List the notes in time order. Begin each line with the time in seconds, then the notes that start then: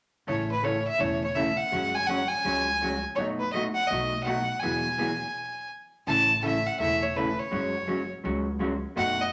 0.27 A1 C#3 E3 A3 C#4 A4 C#5
0.52 B4
0.63 C#3 E3 A3 C#4 A4 C#5
0.87 E5
0.99 E1 C#3 E3 A3 C#4 A4 C#5
1.24 C#5
1.35 C#3 E3 A3 C#4 A4 E5
1.57 F#5
1.72 F#1 F#3 G#3 C#4 F#4 C#5
1.95 G#5
2.07 F#3 G#3 C#4 F#4 C#5 F#5
2.29 G#5
2.45 C#2 F#3 G#3 C#4 F#4 C#5
2.82 F#3 G#3 C#4 F#4 C#5
3.16 F#1 B2 F#3 A3 D#4 F#4 C#5
3.40 B4
3.52 B2 F#3 A3 D#4 F#4 D#5
3.75 F#5
3.88 B1 B2 F#3 A3 D#4 D#5
3.92 F#4
4.23 B2 F#3 A3 D#4 F#5
4.28 F#4
4.60 E1 E3 F#3 B3 F#4 G#4 G#5
4.98 E3 F#3 B3 F#4 G#4
6.07 A1 C#3 E3 A3 C#4 A4 A5
6.43 C#3 E3 A3 C#4 A4 E5
6.67 F#5
6.79 E1 C#3 E3 A3 C#4 A4 E5
7.03 C#5
7.16 C#3 E3 A3 C#4 A4 B4
7.40 C#5
7.51 F#1 F#3 G#3 C#4 F#4 C#5
7.87 F#3 G#3 C#4 F#4 C#5
8.24 C#2 F#3 G#3 C#4 F#4 C#5
8.59 F#3 G#3 C#4 F#4 C#5
8.96 F#1 B2 F#3 A3 D#4 F#4 F#5
9.22 D#5